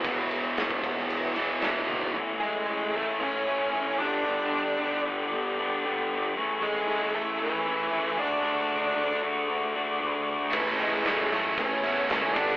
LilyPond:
<<
  \new Staff \with { instrumentName = "Tonewheel organ" } { \time 4/4 \key a \major \tempo 4 = 115 << { <e' gis' cis''>1 | <cis'' e''>2.~ <cis'' e''>8 <d'' g'' b''>8~ | <d'' g'' b''>1 | <e'' gis'' cis'''>2.~ <e'' gis'' cis'''>8 <d'' fis'' d'''>8~ |
<d'' fis'' d'''>1 | <e'' gis'' cis'''>2.~ <e'' gis'' cis'''>8 <d'' g'' b''>8 | } \\ { r1 | gis''2.~ gis''8 a'8~ | a'1 | gis'1~ |
gis'1 | gis'2.~ gis'8 a'8 | } >> }
  \new Staff \with { instrumentName = "Lead electric guitar" } { \time 4/4 \key a \major r1 | r8 <gis gis'>4 <a a'>8 <cis' cis''>4. <d' d''>8~ | <d' d''>4. r2 r8 | r8 <gis gis'>4 <a a'>8 <e e'>4. <d' d''>8~ |
<d' d''>4. r2 r8 | r8 <gis gis'>4 <a a'>8 <cis' cis''>4 <cis' cis''>8 <d' d''>8 | }
  \new Staff \with { instrumentName = "Distorted electric guitar" } { \time 4/4 \key a \major <e, b, e>2~ <e, b, e>8 <e, b, e>8 <e, b, e>4 | <a, e a cis' e'>4 <a, e a cis' e'>8 <a cis' e'>4 <a cis' e'>8 <e a cis' e'>8 <g, d g b d'>8 | <g, d g b d'>4 <g, d g b d'>8 <g b d'>4 <g b d'>8 <d g b d'>4 | <a, e a cis' e'>4 <a, e a cis' e'>8 <a cis' e'>4 <a cis' e'>8 <e a cis' e'>8 <d a d' fis'>8 |
<d a d' fis'>4 <d a d' fis'>8 <a d' fis'>4 <a d' fis'>8 <d a d' fis'>4 | <a, e a cis' e'>4 <a, e a cis' e'>8 <a cis' e'>4 <a cis' e'>8 <e a cis' e'>8 <g, d g b d'>8 | }
  \new Staff \with { instrumentName = "Distorted electric guitar" } { \clef bass \time 4/4 \key a \major <e, b, e>2~ <e, b, e>8 <e, b, e>8 <e, b, e>4 | r1 | r1 | r1 |
r1 | <a, e a cis' e'>8 <a cis' e'>8 <a, e a cis' e'>4. <a cis' e'>8 <e a cis' e'>8 <g, d g b d'>8 | }
  \new Staff \with { instrumentName = "Picked electric bass" } { \clef bass \time 4/4 \key a \major e,,8 e,,8 e,,8 e,,8 e,,8 e,8 e,,8 e,,8 | r1 | r1 | r1 |
r1 | a,,8 a,,8 a,,8 fis,8 a,,8 e,8 cis,8 g,,8 | }
  \new DrumStaff \with { instrumentName = "Drums" } \drummode { \time 4/4 <bd cymr>8 cymr8 <cymr sn>16 bd16 <bd cymr>16 sn16 cymr8 cymr8 <cymr sn>8 tommh16 tomfh16 | r4 r4 r4 r4 | r4 r4 r4 r4 | r4 r4 r4 r4 |
r4 r4 r4 r4 | <cymc bd>8 hho8 <hho sn>8 <hho sn>8 <hho bd>8 hho8 <hho sn>8 <hho bd>8 | }
>>